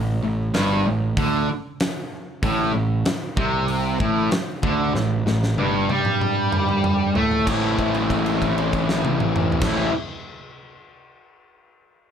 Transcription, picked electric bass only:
Already playing: A1
0.23 A1
0.55 G1
0.86 A1
1.17 D2
2.43 A1
2.75 A1
3.06 muted picked electric bass stroke
3.37 C2
4.00 A1
4.32 muted picked electric bass stroke
4.63 D2
4.95 A1
5.26 A1
5.57 G1
5.89 G2
7.16 A2
7.47 A1
9.62 A1

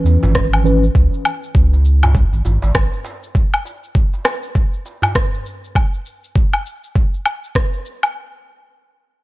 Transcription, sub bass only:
0.04 E2
0.23 G#1
0.95 C#2
1.55 C#2
2.33 G#1
2.45 G#1
2.63 G#1
2.75 G#1

